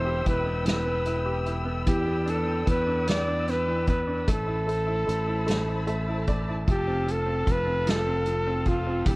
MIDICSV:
0, 0, Header, 1, 6, 480
1, 0, Start_track
1, 0, Tempo, 798935
1, 1126, Time_signature, 6, 3, 24, 8
1, 5503, End_track
2, 0, Start_track
2, 0, Title_t, "String section"
2, 0, Program_c, 0, 48
2, 0, Note_on_c, 0, 69, 72
2, 0, Note_on_c, 0, 79, 64
2, 0, Note_on_c, 0, 83, 61
2, 0, Note_on_c, 0, 88, 78
2, 1099, Note_off_c, 0, 69, 0
2, 1107, Note_off_c, 0, 79, 0
2, 1118, Note_on_c, 0, 79, 63
2, 1119, Note_on_c, 0, 74, 63
2, 2544, Note_off_c, 0, 83, 0
2, 2555, Note_off_c, 0, 74, 0
2, 2555, Note_off_c, 0, 79, 0
2, 2565, Note_on_c, 0, 72, 72
2, 2565, Note_on_c, 0, 83, 67
2, 2567, Note_on_c, 0, 81, 69
2, 3993, Note_off_c, 0, 72, 0
2, 3993, Note_off_c, 0, 83, 0
2, 4010, Note_on_c, 0, 69, 72
2, 4010, Note_on_c, 0, 77, 72
2, 5416, Note_off_c, 0, 81, 0
2, 5416, Note_off_c, 0, 88, 0
2, 5428, Note_off_c, 0, 77, 0
2, 5438, Note_on_c, 0, 79, 67
2, 5439, Note_on_c, 0, 83, 71
2, 5444, Note_on_c, 0, 88, 83
2, 5503, Note_off_c, 0, 69, 0
2, 5503, Note_off_c, 0, 79, 0
2, 5503, Note_off_c, 0, 83, 0
2, 5503, Note_off_c, 0, 88, 0
2, 5503, End_track
3, 0, Start_track
3, 0, Title_t, "Flugelhorn"
3, 0, Program_c, 1, 56
3, 0, Note_on_c, 1, 72, 87
3, 170, Note_off_c, 1, 72, 0
3, 174, Note_on_c, 1, 71, 81
3, 392, Note_off_c, 1, 71, 0
3, 406, Note_on_c, 1, 71, 83
3, 923, Note_off_c, 1, 71, 0
3, 1130, Note_on_c, 1, 67, 92
3, 1381, Note_on_c, 1, 69, 89
3, 1390, Note_off_c, 1, 67, 0
3, 1616, Note_off_c, 1, 69, 0
3, 1625, Note_on_c, 1, 71, 87
3, 1842, Note_off_c, 1, 71, 0
3, 1863, Note_on_c, 1, 74, 92
3, 2103, Note_on_c, 1, 71, 95
3, 2112, Note_off_c, 1, 74, 0
3, 2332, Note_off_c, 1, 71, 0
3, 2336, Note_on_c, 1, 71, 89
3, 2581, Note_on_c, 1, 69, 93
3, 2590, Note_off_c, 1, 71, 0
3, 3776, Note_off_c, 1, 69, 0
3, 4030, Note_on_c, 1, 67, 99
3, 4274, Note_on_c, 1, 69, 99
3, 4283, Note_off_c, 1, 67, 0
3, 4517, Note_on_c, 1, 71, 107
3, 4526, Note_off_c, 1, 69, 0
3, 4743, Note_on_c, 1, 69, 107
3, 4753, Note_off_c, 1, 71, 0
3, 5217, Note_on_c, 1, 65, 88
3, 5226, Note_off_c, 1, 69, 0
3, 5448, Note_off_c, 1, 65, 0
3, 5452, Note_on_c, 1, 67, 100
3, 5503, Note_off_c, 1, 67, 0
3, 5503, End_track
4, 0, Start_track
4, 0, Title_t, "Upright piano"
4, 0, Program_c, 2, 0
4, 0, Control_c, 2, 64, 127
4, 0, Note_on_c, 2, 47, 52
4, 0, Note_on_c, 2, 52, 67
4, 0, Note_on_c, 2, 64, 51
4, 31, Note_on_c, 2, 67, 52
4, 144, Note_off_c, 2, 64, 0
4, 153, Note_on_c, 2, 64, 51
4, 273, Note_on_c, 2, 59, 43
4, 377, Note_off_c, 2, 52, 0
4, 386, Note_on_c, 2, 52, 61
4, 501, Note_off_c, 2, 59, 0
4, 510, Note_on_c, 2, 59, 44
4, 625, Note_off_c, 2, 64, 0
4, 635, Note_on_c, 2, 64, 49
4, 738, Note_off_c, 2, 47, 0
4, 744, Note_off_c, 2, 67, 0
4, 753, Note_on_c, 2, 67, 50
4, 865, Note_off_c, 2, 64, 0
4, 874, Note_on_c, 2, 64, 47
4, 980, Note_off_c, 2, 59, 0
4, 989, Note_on_c, 2, 59, 46
4, 1097, Note_off_c, 2, 52, 0
4, 1110, Note_off_c, 2, 67, 0
4, 1114, Note_off_c, 2, 59, 0
4, 1114, Note_off_c, 2, 64, 0
4, 1118, Note_on_c, 2, 52, 63
4, 1133, Control_c, 2, 64, 0
4, 1237, Note_on_c, 2, 59, 47
4, 1249, Control_c, 2, 64, 127
4, 1357, Note_on_c, 2, 62, 46
4, 1466, Note_off_c, 2, 52, 0
4, 1475, Note_on_c, 2, 52, 50
4, 1589, Note_off_c, 2, 59, 0
4, 1598, Note_on_c, 2, 59, 50
4, 1715, Note_off_c, 2, 62, 0
4, 1724, Note_on_c, 2, 62, 45
4, 1837, Note_off_c, 2, 59, 0
4, 1846, Note_on_c, 2, 59, 63
4, 1957, Note_off_c, 2, 62, 0
4, 1966, Note_on_c, 2, 62, 46
4, 2079, Note_off_c, 2, 59, 0
4, 2088, Note_on_c, 2, 59, 51
4, 2200, Note_off_c, 2, 52, 0
4, 2209, Note_on_c, 2, 52, 53
4, 2325, Note_off_c, 2, 59, 0
4, 2334, Note_on_c, 2, 59, 50
4, 2439, Note_off_c, 2, 62, 0
4, 2448, Note_on_c, 2, 62, 51
4, 2560, Note_off_c, 2, 52, 0
4, 2566, Note_off_c, 2, 59, 0
4, 2567, Note_off_c, 2, 62, 0
4, 2571, Note_on_c, 2, 57, 69
4, 2582, Control_c, 2, 64, 0
4, 2672, Control_c, 2, 64, 127
4, 2685, Note_on_c, 2, 64, 54
4, 2797, Note_off_c, 2, 57, 0
4, 2806, Note_on_c, 2, 57, 49
4, 2915, Note_off_c, 2, 64, 0
4, 2924, Note_on_c, 2, 64, 57
4, 3036, Note_off_c, 2, 57, 0
4, 3045, Note_on_c, 2, 57, 55
4, 3159, Note_off_c, 2, 64, 0
4, 3168, Note_on_c, 2, 64, 47
4, 3276, Note_off_c, 2, 57, 0
4, 3285, Note_on_c, 2, 57, 61
4, 3401, Note_off_c, 2, 64, 0
4, 3411, Note_on_c, 2, 64, 50
4, 3518, Note_off_c, 2, 57, 0
4, 3526, Note_on_c, 2, 76, 70
4, 3527, Note_on_c, 2, 57, 57
4, 3643, Note_off_c, 2, 64, 0
4, 3652, Note_on_c, 2, 64, 57
4, 3752, Note_off_c, 2, 76, 0
4, 3761, Note_off_c, 2, 57, 0
4, 3770, Note_on_c, 2, 57, 51
4, 3771, Note_on_c, 2, 74, 63
4, 3886, Note_off_c, 2, 64, 0
4, 3895, Note_on_c, 2, 64, 51
4, 3994, Note_off_c, 2, 74, 0
4, 4003, Note_off_c, 2, 57, 0
4, 4010, Note_off_c, 2, 64, 0
4, 4010, Note_on_c, 2, 53, 66
4, 4018, Control_c, 2, 64, 0
4, 4116, Control_c, 2, 64, 127
4, 4129, Note_on_c, 2, 60, 56
4, 4236, Note_off_c, 2, 53, 0
4, 4245, Note_on_c, 2, 53, 53
4, 4354, Note_off_c, 2, 60, 0
4, 4363, Note_on_c, 2, 60, 53
4, 4472, Note_off_c, 2, 53, 0
4, 4481, Note_on_c, 2, 53, 55
4, 4597, Note_off_c, 2, 60, 0
4, 4606, Note_on_c, 2, 60, 46
4, 4717, Note_off_c, 2, 53, 0
4, 4726, Note_on_c, 2, 53, 68
4, 4838, Note_off_c, 2, 60, 0
4, 4847, Note_on_c, 2, 60, 54
4, 4962, Note_off_c, 2, 53, 0
4, 4971, Note_on_c, 2, 53, 55
4, 5082, Note_off_c, 2, 60, 0
4, 5091, Note_on_c, 2, 60, 57
4, 5203, Note_off_c, 2, 53, 0
4, 5212, Note_on_c, 2, 53, 53
4, 5320, Note_off_c, 2, 60, 0
4, 5329, Note_on_c, 2, 60, 50
4, 5440, Note_off_c, 2, 53, 0
4, 5442, Note_off_c, 2, 60, 0
4, 5442, Note_on_c, 2, 52, 64
4, 5452, Control_c, 2, 64, 0
4, 5503, Note_off_c, 2, 52, 0
4, 5503, End_track
5, 0, Start_track
5, 0, Title_t, "Fingered electric bass"
5, 0, Program_c, 3, 33
5, 0, Note_on_c, 3, 28, 95
5, 135, Note_off_c, 3, 28, 0
5, 160, Note_on_c, 3, 28, 89
5, 1102, Note_off_c, 3, 28, 0
5, 1127, Note_on_c, 3, 40, 91
5, 1586, Note_off_c, 3, 40, 0
5, 1606, Note_on_c, 3, 40, 85
5, 2547, Note_off_c, 3, 40, 0
5, 2570, Note_on_c, 3, 33, 96
5, 3028, Note_off_c, 3, 33, 0
5, 3054, Note_on_c, 3, 33, 90
5, 3988, Note_off_c, 3, 33, 0
5, 4011, Note_on_c, 3, 29, 93
5, 4465, Note_off_c, 3, 29, 0
5, 4490, Note_on_c, 3, 29, 91
5, 5419, Note_off_c, 3, 29, 0
5, 5448, Note_on_c, 3, 28, 106
5, 5503, Note_off_c, 3, 28, 0
5, 5503, End_track
6, 0, Start_track
6, 0, Title_t, "Drums"
6, 156, Note_on_c, 9, 42, 52
6, 158, Note_on_c, 9, 36, 75
6, 216, Note_off_c, 9, 42, 0
6, 218, Note_off_c, 9, 36, 0
6, 394, Note_on_c, 9, 42, 81
6, 405, Note_on_c, 9, 38, 100
6, 454, Note_off_c, 9, 42, 0
6, 465, Note_off_c, 9, 38, 0
6, 633, Note_on_c, 9, 42, 47
6, 693, Note_off_c, 9, 42, 0
6, 877, Note_on_c, 9, 42, 38
6, 938, Note_off_c, 9, 42, 0
6, 1121, Note_on_c, 9, 42, 81
6, 1124, Note_on_c, 9, 36, 100
6, 1181, Note_off_c, 9, 42, 0
6, 1184, Note_off_c, 9, 36, 0
6, 1366, Note_on_c, 9, 42, 43
6, 1426, Note_off_c, 9, 42, 0
6, 1606, Note_on_c, 9, 42, 54
6, 1607, Note_on_c, 9, 36, 83
6, 1666, Note_off_c, 9, 42, 0
6, 1667, Note_off_c, 9, 36, 0
6, 1848, Note_on_c, 9, 42, 82
6, 1859, Note_on_c, 9, 38, 100
6, 1908, Note_off_c, 9, 42, 0
6, 1919, Note_off_c, 9, 38, 0
6, 2088, Note_on_c, 9, 42, 44
6, 2102, Note_on_c, 9, 38, 29
6, 2148, Note_off_c, 9, 42, 0
6, 2162, Note_off_c, 9, 38, 0
6, 2327, Note_on_c, 9, 42, 41
6, 2331, Note_on_c, 9, 36, 81
6, 2387, Note_off_c, 9, 42, 0
6, 2391, Note_off_c, 9, 36, 0
6, 2570, Note_on_c, 9, 42, 82
6, 2572, Note_on_c, 9, 36, 97
6, 2630, Note_off_c, 9, 42, 0
6, 2632, Note_off_c, 9, 36, 0
6, 2816, Note_on_c, 9, 42, 45
6, 2876, Note_off_c, 9, 42, 0
6, 3057, Note_on_c, 9, 42, 53
6, 3117, Note_off_c, 9, 42, 0
6, 3291, Note_on_c, 9, 42, 78
6, 3302, Note_on_c, 9, 38, 102
6, 3351, Note_off_c, 9, 42, 0
6, 3362, Note_off_c, 9, 38, 0
6, 3528, Note_on_c, 9, 42, 42
6, 3588, Note_off_c, 9, 42, 0
6, 3769, Note_on_c, 9, 42, 42
6, 3771, Note_on_c, 9, 36, 74
6, 3829, Note_off_c, 9, 42, 0
6, 3831, Note_off_c, 9, 36, 0
6, 4010, Note_on_c, 9, 42, 84
6, 4011, Note_on_c, 9, 36, 108
6, 4070, Note_off_c, 9, 42, 0
6, 4071, Note_off_c, 9, 36, 0
6, 4255, Note_on_c, 9, 42, 48
6, 4315, Note_off_c, 9, 42, 0
6, 4489, Note_on_c, 9, 36, 85
6, 4490, Note_on_c, 9, 42, 53
6, 4549, Note_off_c, 9, 36, 0
6, 4550, Note_off_c, 9, 42, 0
6, 4727, Note_on_c, 9, 42, 86
6, 4738, Note_on_c, 9, 38, 98
6, 4787, Note_off_c, 9, 42, 0
6, 4798, Note_off_c, 9, 38, 0
6, 4960, Note_on_c, 9, 42, 46
6, 5021, Note_off_c, 9, 42, 0
6, 5202, Note_on_c, 9, 42, 41
6, 5205, Note_on_c, 9, 36, 77
6, 5262, Note_off_c, 9, 42, 0
6, 5265, Note_off_c, 9, 36, 0
6, 5443, Note_on_c, 9, 42, 82
6, 5445, Note_on_c, 9, 36, 107
6, 5503, Note_off_c, 9, 36, 0
6, 5503, Note_off_c, 9, 42, 0
6, 5503, End_track
0, 0, End_of_file